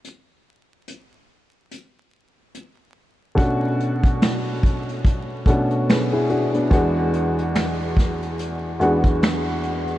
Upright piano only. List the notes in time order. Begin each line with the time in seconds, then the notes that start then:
3.35 B2 A3 C#4 D4 F#4
5.47 B2 A3 C#4 D4 F#4
5.90 G#4 B4
6.13 E4 G#4
6.30 D4 F#4
6.54 B3 D4
6.70 E2 G#3 B3 D4 F#4
8.79 E2 G#3 B3 D4 F#4